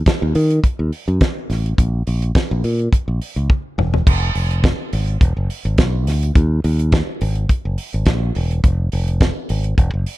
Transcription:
0.06 kick, snare, closed hi-hat
0.22 fingered electric bass D#2
0.35 fingered electric bass D#3, open hi-hat
0.50 closed hi-hat
0.64 kick, closed hi-hat
0.79 fingered electric bass D#2
0.93 open hi-hat
1.08 fingered electric bass F#2, closed hi-hat
1.21 kick, snare, closed hi-hat
1.50 fingered electric bass A1, snare, open hi-hat
1.66 closed hi-hat
1.78 fingered electric bass A#1, kick, closed hi-hat
2.07 fingered electric bass A#1, open hi-hat
2.22 closed hi-hat
2.35 kick, snare, closed hi-hat
2.51 fingered electric bass A#1
2.64 fingered electric bass A#2, open hi-hat
2.79 closed hi-hat
2.93 kick, closed hi-hat
3.08 fingered electric bass A#1
3.22 open hi-hat
3.36 fingered electric bass C#2, closed hi-hat
3.50 kick, high tom
3.78 fingered electric bass E1, mid tom
3.94 floor tom
4.07 fingered electric bass F1, kick, crash
4.35 fingered electric bass F1, open hi-hat
4.51 closed hi-hat
4.64 kick, snare, closed hi-hat
4.93 fingered electric bass G#1, open hi-hat
5.07 closed hi-hat
5.21 fingered electric bass E1, kick, closed hi-hat
5.37 fingered electric bass F#1
5.50 open hi-hat
5.65 fingered electric bass G#1, closed hi-hat
5.78 fingered electric bass B1, kick, snare, closed hi-hat
6.07 fingered electric bass D2, snare, open hi-hat
6.23 closed hi-hat
6.35 fingered electric bass D#2, kick, closed hi-hat
6.64 fingered electric bass D#2, open hi-hat
6.79 closed hi-hat
6.92 kick, snare, closed hi-hat
7.21 fingered electric bass G#1, open hi-hat
7.35 closed hi-hat
7.49 kick, closed hi-hat
7.65 fingered electric bass F#1
7.78 open hi-hat
7.93 fingered electric bass G#1, closed hi-hat
8.06 fingered electric bass A#1, kick, snare, closed hi-hat
8.35 fingered electric bass E1, open hi-hat
8.51 closed hi-hat
8.64 fingered electric bass F1, kick, closed hi-hat
8.92 fingered electric bass F1, open hi-hat
9.08 closed hi-hat
9.21 kick, snare, closed hi-hat
9.49 fingered electric bass G#1, open hi-hat
9.64 closed hi-hat
9.78 fingered electric bass E1, kick, closed hi-hat
9.94 fingered electric bass F#1
10.06 open hi-hat

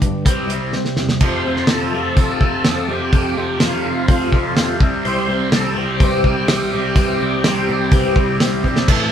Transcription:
0.02 tine electric piano G2, overdriven electric guitar G2 D3, steel-string acoustic guitar G4 B4, kick, closed hi-hat
0.06 steel-string acoustic guitar D4
0.25 tine electric piano C2, overdriven electric guitar C3 G3 C4, steel-string acoustic guitar C3 E3 G3 C4, kick, closed hi-hat
0.29 steel-string acoustic guitar E4 C5
0.48 tine electric piano C2, overdriven electric guitar C3 G3 C4, steel-string acoustic guitar E4 C5, closed hi-hat
0.53 steel-string acoustic guitar G3 C4
0.71 tine electric piano C3, overdriven electric guitar C3 G3, steel-string acoustic guitar G3 C4 E4, snare
0.76 steel-string acoustic guitar C5
0.85 snare
0.96 tine electric piano E2, overdriven electric guitar C3 G3, steel-string acoustic guitar C4 E4 C5, snare
1.01 steel-string acoustic guitar G3
1.09 snare
1.20 tine electric piano F2, overdriven electric guitar F2 C3 F3, steel-string acoustic guitar F3 A3 C4 F4 A4, kick, crash
1.26 tonewheel organ C5
1.45 tine electric piano F2, overdriven electric guitar F2 C3 F3, steel-string acoustic guitar A4
1.49 steel-string acoustic guitar C4 F4
1.56 snare
1.67 tine electric piano F2, overdriven electric guitar F2 C3 F3, steel-string acoustic guitar A3, snare, open hi-hat
1.72 steel-string acoustic guitar C4 F4 A4, tonewheel organ A4
1.93 tine electric piano F2, overdriven electric guitar F2 C3 F3, steel-string acoustic guitar C4 F4 A4
2.16 tine electric piano F2, overdriven electric guitar F2 C3 F3, steel-string acoustic guitar F3 C4, tonewheel organ A4, kick, open hi-hat
2.20 steel-string acoustic guitar A3 F4 A4
2.41 tine electric piano F2, overdriven electric guitar F2 C3 F3, steel-string acoustic guitar A4, kick
2.45 steel-string acoustic guitar C4 F4
2.64 tine electric piano F2, overdriven electric guitar F2 C3, steel-string acoustic guitar A3 C4 F4, snare, open hi-hat
2.68 overdriven electric guitar F3, steel-string acoustic guitar A4
2.88 tine electric piano F2, overdriven electric guitar F2 C3 F3, steel-string acoustic guitar C4 F4 A4, tonewheel organ G4
3.12 tine electric piano F2, overdriven electric guitar F2 C3 F3, steel-string acoustic guitar F3 A3 C4 F4 A4, kick, open hi-hat
3.36 tine electric piano F2, overdriven electric guitar F2 C3 F3, steel-string acoustic guitar C4 F4 A4
3.60 tine electric piano F2, overdriven electric guitar F2 C3 F3, steel-string acoustic guitar A3 C4 F4 A4, tonewheel organ F4, snare, open hi-hat
3.83 overdriven electric guitar F2 C3 F3, tine electric piano F2, steel-string acoustic guitar C4 F4 A4
4.08 overdriven electric guitar F2 C3 F3, tine electric piano F2, steel-string acoustic guitar F3 A3 C4 F4, tonewheel organ F4, kick, open hi-hat
4.12 steel-string acoustic guitar A4
4.32 tine electric piano F2, overdriven electric guitar F2 C3 F3, steel-string acoustic guitar F4 A4, kick
4.36 steel-string acoustic guitar C4
4.56 tine electric piano F2, overdriven electric guitar F2 C3 F3, steel-string acoustic guitar A3, snare, open hi-hat
4.61 steel-string acoustic guitar C4 F4 A4
4.80 tine electric piano C2, overdriven electric guitar C3 G3 C4, steel-string acoustic guitar C4 E4 C5, kick
4.85 steel-string acoustic guitar G3
5.04 tine electric piano C2, overdriven electric guitar C3 G3 C4, steel-string acoustic guitar C3 E3 G3 C4 E4, tonewheel organ C5, open hi-hat
5.09 steel-string acoustic guitar C5
5.28 tine electric piano C2, overdriven electric guitar C3 G3 C4, steel-string acoustic guitar C4 E4 C5
5.32 steel-string acoustic guitar G3
5.52 tine electric piano C2, overdriven electric guitar C3 G3 C4, steel-string acoustic guitar G3 C4 E4 C5, tonewheel organ A4, snare, open hi-hat
5.74 tine electric piano C2, overdriven electric guitar C3 G3 C4, steel-string acoustic guitar C4 E4 C5, tonewheel organ G4
5.80 steel-string acoustic guitar G3
6.00 tine electric piano C2, overdriven electric guitar C3 G3 C4, steel-string acoustic guitar C3 E3 G3 C4 E4 C5, kick, open hi-hat
6.23 tine electric piano C2, overdriven electric guitar C3 G3 C4, steel-string acoustic guitar E4 C5, kick
6.28 steel-string acoustic guitar G3 C4
6.48 tine electric piano C2, overdriven electric guitar C3 G3 C4, steel-string acoustic guitar G3 C4 E4 C5, snare, open hi-hat
6.72 tine electric piano C2, overdriven electric guitar C3 G3 C4, steel-string acoustic guitar G3 C4 E4 C5
6.96 tine electric piano C2, steel-string acoustic guitar C3 E3 G3 C4 E4 C5, overdriven electric guitar C3 G3 C4, kick, open hi-hat
7.19 tine electric piano C2, overdriven electric guitar C3 G3 C4, steel-string acoustic guitar G3 C4 E4 C5
7.44 tine electric piano C2, overdriven electric guitar C3 G3 C4, steel-string acoustic guitar G3 C4 E4 C5, snare, open hi-hat
7.68 tine electric piano C2, overdriven electric guitar C3 G3 C4, steel-string acoustic guitar G3 C4 E4 C5
7.91 tine electric piano C2, steel-string acoustic guitar C3 E3 G3 C4 E4 C5, overdriven electric guitar C3 G3 C4, kick, open hi-hat
8.15 tine electric piano C2, overdriven electric guitar C3 G3 C4, steel-string acoustic guitar G3 C4 E4 C5, kick
8.40 tine electric piano C2, overdriven electric guitar C3 G3 C4, steel-string acoustic guitar G3 C4 E4 C5, snare, open hi-hat
8.63 tine electric piano B1, overdriven electric guitar C3 G3 C4, steel-string acoustic guitar E4 C5, kick
8.67 steel-string acoustic guitar G3 C4
8.76 snare
8.87 tine electric piano A1, overdriven electric guitar A2 E3 A3 C4 E4, steel-string acoustic guitar A2 E3 A3 C4 E4 A4, tonewheel organ A4, kick, crash

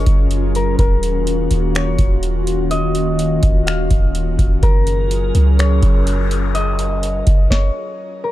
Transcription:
Already playing: ambient pad F#3 C#4 F4 G#4 A#4, harp C#5 D#5
0.07 808-style bass F#1, kick, closed hi-hat
0.31 closed hi-hat
0.55 harp A#4, closed hi-hat
0.79 808-style bass D#1, ambient pad D#3 A#3 F#4, harp A#4, kick, closed hi-hat
1.03 closed hi-hat
1.27 closed hi-hat
1.51 808-style bass D#1, closed hi-hat
1.75 harp C#5, finger snap, closed hi-hat
1.99 808-style bass D#1, kick, closed hi-hat
2.23 closed hi-hat
2.47 closed hi-hat
2.71 harp D#5, closed hi-hat
2.95 closed hi-hat
3.19 closed hi-hat
3.43 808-style bass D#1, kick, closed hi-hat
3.67 harp F5, finger snap, closed hi-hat
3.91 808-style bass D#1, kick, closed hi-hat
4.15 closed hi-hat
4.39 808-style bass D#1, kick, closed hi-hat
4.63 808-style bass F#1, ambient pad F#3 C#4 G#4 A#4, harp A#4, kick, closed hi-hat, noise sweep
4.87 closed hi-hat
5.11 closed hi-hat
5.35 808-style bass C#2, closed hi-hat
5.59 harp C#5, finger snap, closed hi-hat
5.83 808-style bass F#1, kick, closed hi-hat
6.07 closed hi-hat
6.31 closed hi-hat
6.55 harp D#5, closed hi-hat
6.79 closed hi-hat
7.03 closed hi-hat
7.27 808-style bass F#1, kick, closed hi-hat
7.50 harp C#5, kick, snare
8.24 harp A#4

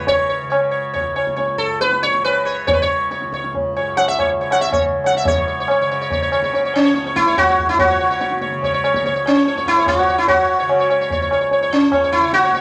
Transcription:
Already playing: tanpura C#2 F#2 C#3
0.07 sitar C#5, tabla tin, tabla ge
0.29 sitar C#5
0.42 tanpura C#3
0.50 sitar C#5, tabla na
0.71 sitar C#5
0.93 sitar C#5, tabla tin, tabla ge
0.99 tanpura C#2
1.16 sitar C#5, tabla na
1.27 tabla ke
1.36 sitar C#5, tabla tin
1.55 tanpura F#2, sitar A4
1.81 sitar B4, tabla te
1.93 tabla te
2.03 sitar C#5, tabla ke
2.10 tanpura C#3
2.14 tabla te
2.24 sitar B4, tabla na
2.45 sitar C#5
2.65 tanpura C#3, sitar C#5, tabla tin, tabla ge
2.73 sitar B4
2.82 sitar C#5
3.11 sitar C#5, tabla te
3.21 tanpura C#2, tabla te
3.33 sitar C#5, tabla ke
3.44 tabla te
3.55 tabla tin, tabla ge
3.76 tanpura F#2, sitar C#5, tabla na
3.97 sitar F#5, tabla na
4.08 sitar E5, tabla te
4.19 sitar C#5, tabla na, tabla ge
4.32 tanpura C#3
4.41 sitar C#5
4.51 sitar F#5, tabla na
4.61 sitar E5, tabla te
4.72 sitar C#5, tabla na, tabla ge
4.85 tanpura C#3
5.04 sitar F#5, tabla na
5.15 sitar E5, tabla te
5.25 tanpura F#2, sitar C#5, tabla tin, tabla ge
5.39 sitar C#5
5.48 sitar C#5
5.60 sitar C#5
5.68 sitar C#5, tabla na
5.79 tanpura C#3, sitar C#5
5.92 sitar C#5
6.01 sitar C#5
6.10 sitar C#5, tabla tin, tabla ge
6.22 sitar C#5
6.32 tanpura C#3, sitar C#5, tabla na
6.42 sitar C#5, tabla ke
6.53 sitar C#5, tabla tin
6.65 sitar C#5
6.74 sitar C#4, tabla na
6.85 tanpura C#2, sitar C#5
6.95 sitar C#5, tabla te
7.06 sitar C#5, tabla te
7.16 sitar E4, tabla ke
7.27 sitar C#5, tabla te
7.38 sitar F#4, tabla na, tabla ge
7.43 tanpura F#2
7.49 sitar C#5
7.59 tabla ge
7.69 sitar E4
7.79 sitar F#4, tabla tin, tabla ge
7.90 sitar C#5
7.95 tanpura C#3
8.00 sitar C#5
8.10 sitar C#5
8.21 sitar C#5, tabla te
8.31 tabla te
8.41 sitar C#5, tabla ke
8.48 tanpura C#3, tabla te
8.63 sitar C#5, tabla tin, tabla ge
8.74 sitar C#5
8.84 sitar C#5, tabla na
8.94 sitar C#5, tabla ke
9.02 tanpura C#2, sitar C#5, tabla tin
9.16 sitar C#5
9.26 sitar C#4, tabla na
9.37 sitar C#5
9.46 sitar C#5, tabla te
9.55 tanpura F#2, sitar C#5, tabla te
9.66 sitar E4, tabla ke
9.76 sitar C#5, tabla te
9.86 sitar F#4, tabla na, tabla ge
9.98 sitar C#5
10.08 tanpura C#3, sitar C#5, tabla ge
10.18 sitar E4
10.28 sitar F#4, tabla tin, tabla ge
10.40 sitar C#5
10.59 tanpura C#3, sitar C#5
10.69 tabla na
10.80 sitar C#5
10.90 sitar C#5, tabla na
11.01 sitar C#5
11.10 sitar C#5, tabla tin, tabla ge
11.16 tanpura C#2
11.22 sitar C#5
11.31 sitar C#5, tabla na
11.41 sitar C#5
11.51 sitar C#5, tabla tin
11.63 sitar C#5
11.68 tanpura F#2
11.73 sitar C#4
11.92 sitar C#5, tabla na, tabla ge
12.04 sitar C#5
12.12 sitar E4, tabla ge
12.19 tanpura C#3
12.23 sitar C#5
12.33 sitar F#4, tabla te
12.43 sitar C#5, tabla te
12.53 sitar C#5, tabla ke

